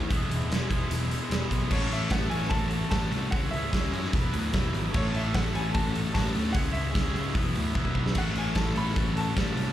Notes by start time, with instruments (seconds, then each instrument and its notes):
Already playing: distorted electric guitar A3 E4
0.09 picked electric bass E1, distorted electric guitar E3 G#3 B3 E4, kick, closed hi-hat
0.28 picked electric bass E1, closed hi-hat
0.49 picked electric bass E1, snare, closed hi-hat
0.69 picked electric bass E1, distorted electric guitar G#3 B3 E4, kick, closed hi-hat
0.74 distorted electric guitar E3
0.89 picked electric bass E1, closed hi-hat
1.11 closed hi-hat
1.30 picked electric bass E1, snare, closed hi-hat
1.51 picked electric bass B1, kick, closed hi-hat
1.71 picked electric bass A1, distorted electric guitar A3 C#4 E4, upright piano C#5, kick, crash
1.75 distorted electric guitar A4
1.89 picked electric bass A1, distorted electric guitar A4, upright piano E5, open hi-hat
1.94 distorted electric guitar C#4 E4
2.10 picked electric bass A1, distorted electric guitar A3 C#4 E4, upright piano F#5, kick, snare, open hi-hat
2.15 distorted electric guitar A4
2.30 picked electric bass A1, distorted electric guitar E4 A4, upright piano G#5, open hi-hat
2.35 distorted electric guitar C#4
2.42 snare
2.50 picked electric bass A1, distorted electric guitar A3 C#4 F#4, upright piano A5, kick, open hi-hat
2.54 distorted electric guitar A4
2.71 distorted electric guitar F#4 A4, open hi-hat
2.75 distorted electric guitar C#4
2.91 picked electric bass A1, distorted electric guitar A3 C#4, upright piano A5, kick, snare, open hi-hat
2.95 distorted electric guitar F#4 A4
3.11 picked electric bass C2, open hi-hat
3.31 picked electric bass C#2, distorted electric guitar C#3 G#3 C#4, upright piano F#5, kick, open hi-hat
3.35 distorted electric guitar E4 G#4
3.51 picked electric bass C#2, distorted electric guitar E4 G#4, upright piano E5, open hi-hat
3.55 distorted electric guitar C#4
3.71 picked electric bass C#2, distorted electric guitar G#3 C#4 E4 G#4, kick, snare, open hi-hat
3.92 picked electric bass F#2, distorted electric guitar E4 G#4, open hi-hat
3.96 distorted electric guitar C#4
4.05 snare
4.13 picked electric bass E1, distorted electric guitar E3 F#3 B3 E4 B4, kick, open hi-hat
4.31 picked electric bass D2, distorted electric guitar B3 E4 B4, open hi-hat
4.51 picked electric bass E1, distorted electric guitar E3 F#3 B3 E4 B4, kick, snare, open hi-hat
4.72 picked electric bass G#1, open hi-hat
4.91 picked electric bass A1, distorted electric guitar A3 C#4 E4 A4, kick, crash
4.96 upright piano C#5
5.11 picked electric bass A1, distorted electric guitar C#4 E4 A4, open hi-hat
5.16 upright piano E5
5.33 picked electric bass A1, distorted electric guitar A3 C#4 E4 A4, upright piano F#5, kick, snare, open hi-hat
5.52 picked electric bass A1, distorted electric guitar C#4 E4 A4, upright piano G#5, open hi-hat
5.71 picked electric bass A1, distorted electric guitar A3 C#4 F#4 A4, upright piano A5, kick, open hi-hat
5.94 distorted electric guitar C#4 F#4 A4, open hi-hat
6.12 picked electric bass A1, distorted electric guitar A3 C#4 F#4 A4, upright piano A5, kick, open hi-hat
6.16 snare
6.35 picked electric bass D2, open hi-hat
6.52 picked electric bass C#2, distorted electric guitar C#3 G#3 C#4 E4 G#4, upright piano F#5, kick, open hi-hat
6.72 picked electric bass C#2, distorted electric guitar E4 G#4, upright piano E5, open hi-hat
6.76 distorted electric guitar C#4
6.92 picked electric bass C#2, distorted electric guitar G#3 C#4 E4 G#4, kick, open hi-hat
6.96 snare
7.13 picked electric bass C#2, distorted electric guitar E4 G#4, open hi-hat
7.17 distorted electric guitar C#4
7.27 snare
7.34 picked electric bass E1, distorted electric guitar E3 F#3 B3 E4 B4, kick, open hi-hat
7.54 picked electric bass D2, distorted electric guitar E4 B4, open hi-hat
7.58 distorted electric guitar B3
7.74 picked electric bass E1, distorted electric guitar E3 F#3 B3 E4 B4, kick
7.85 kick
7.95 picked electric bass B1, kick
8.06 snare
8.14 picked electric bass A1, distorted electric guitar A3 C#4 E4 A4, upright piano F#5, kick, open hi-hat, crash
8.33 picked electric bass A1, distorted electric guitar E4 A4, open hi-hat
8.38 distorted electric guitar C#4, upright piano G#5
8.55 picked electric bass A1, distorted electric guitar A3 C#4 E4 A4, upright piano A5, kick, snare, open hi-hat
8.74 picked electric bass A1, distorted electric guitar E4 A4, upright piano B5, open hi-hat
8.79 distorted electric guitar C#4
8.88 snare
8.95 picked electric bass A1, distorted electric guitar A3 C#4 F#4 A4, kick, open hi-hat
9.14 distorted electric guitar C#4 F#4 A4, upright piano A5, open hi-hat
9.35 picked electric bass A1, distorted electric guitar A3 C#4 F#4 A4, kick, snare, open hi-hat
9.56 picked electric bass C2, open hi-hat